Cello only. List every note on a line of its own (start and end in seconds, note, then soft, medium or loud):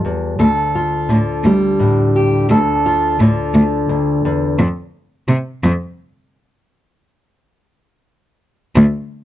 0.40 0.48 D2 medium
1.10 1.18 A2 medium
1.44 1.52 D2 medium
2.50 2.58 D2 medium
3.20 3.28 A2 medium
3.55 3.63 D2 medium
4.59 4.67 F2 medium
5.28 5.36 C3 medium
5.64 5.72 F2 medium
8.76 8.84 D2 loud